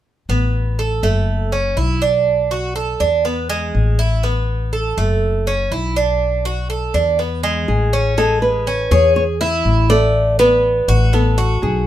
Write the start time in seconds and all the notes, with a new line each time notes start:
0.29 A1 B3
0.79 A4
1.03 F#1 A3
1.52 C#4
1.77 B1 E4
2.02 D4
2.51 F#4
2.76 A4
3.00 E2 D4
3.25 B3
3.49 G#3
3.75 A1
3.99 E4
4.23 B3
4.73 A4
4.97 F#1 A3
5.47 C#4
5.71 B1 E4
5.96 D4
6.45 F#4
6.70 A4
6.94 E2 D4
7.19 B3
7.43 G#3
7.68 A1 G#4
7.93 C#4
8.18 G#3 A4
8.42 B4
8.67 C#4
8.91 E2 G#4 C#5
9.16 C#5
9.41 E4 E5
9.65 A1
9.90 A3 D5
10.39 B3 B4
10.88 A1 F#4
11.13 B3 A4
11.38 F#4
11.62 B1 G#4